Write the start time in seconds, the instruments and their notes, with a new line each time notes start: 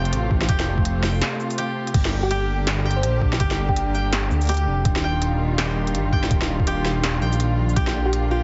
Already playing: detuned saw bass F1, string section C3 A3 F4, koto G4 G5
0.05 closed hi-hat
0.13 detuned saw bass A1, closed hi-hat
0.31 kick
0.41 snare
0.49 detuned saw bass F1, koto G4, kick, closed hi-hat
0.60 snare
0.78 kick
0.85 closed hi-hat
1.03 koto G5, snare, shaker
1.06 shaker
1.09 shaker
1.11 shaker
1.14 shaker
1.16 shaker
1.18 snare, closed hi-hat, shaker
1.40 shaker
1.51 closed hi-hat, shaker
1.58 koto G4, closed hi-hat
1.87 closed hi-hat
1.94 detuned saw bass G1, string section D3 A#3 G4, synth drone D4, kick, closed hi-hat, crash
2.05 snare
2.23 soft synth lead G4
2.31 koto G4, closed hi-hat
2.67 snare, closed hi-hat
2.85 koto G5
2.91 closed hi-hat
2.96 soft synth lead C5
3.03 detuned saw bass A#1, closed hi-hat
3.22 kick
3.33 snare
3.40 detuned saw bass G1, koto G4, kick, closed hi-hat
3.51 snare
3.69 soft synth lead G4, kick
3.76 soft synth lead G4, closed hi-hat
3.95 koto G5, shaker
4.13 snare, closed hi-hat
4.31 detuned saw bass D2, shaker
4.41 closed hi-hat, shaker
4.43 closed hi-hat
4.45 closed hi-hat
4.47 closed hi-hat
4.49 koto G4, closed hi-hat
4.52 closed hi-hat
4.54 closed hi-hat
4.57 closed hi-hat
4.67 detuned saw bass F1
4.85 detuned saw bass D#1, string section D#3 G3 F4, kick, closed hi-hat
4.96 snare
5.04 koto G5
5.22 closed hi-hat
5.58 koto G4, snare, closed hi-hat
5.87 closed hi-hat
5.94 detuned saw bass G1, closed hi-hat
6.13 koto G5, kick
6.23 snare
6.31 detuned saw bass D#1, kick, closed hi-hat
6.41 snare
6.60 kick
6.67 koto G4, closed hi-hat
6.85 snare, shaker
7.04 snare, closed hi-hat
7.22 detuned saw bass A#1, koto G5, shaker
7.33 closed hi-hat, shaker
7.40 closed hi-hat
7.58 detuned saw bass A#1
7.69 shaker
7.76 detuned saw bass A#1, string section D3 A#3, koto G4, kick, closed hi-hat
7.87 snare
8.05 soft synth lead G4
8.13 closed hi-hat
8.31 soft synth lead F4, koto G4